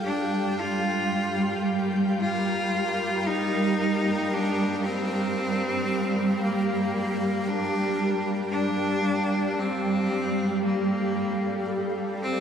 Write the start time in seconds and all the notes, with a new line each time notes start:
Already playing: G3 G4 F5 G5 G6
0.04 G3 D4
0.60 F4
0.65 A#4
2.20 F4
3.27 D#4
4.33 D4
4.85 C4
6.43 A#3
7.48 D4
8.51 D4
9.59 C4
10.21 A4
10.64 A#3
12.23 C4